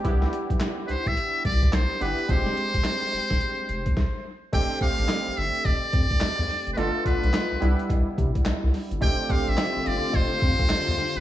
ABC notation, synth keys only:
X:1
M:4/4
L:1/8
Q:"Swing 16ths" 1/4=107
K:Flyd
V:1 name="Synth keys"
[B,DEG]3 z4 [B,DEG] | [_A,CDFG]3 z4 z | [A,CDG] [A,CDG]3 z4 | [A,B,DF] [A,B,DF]2 [G,B,DE]3 z2 |
[A,CDG] [A,CDG]3 z4 |]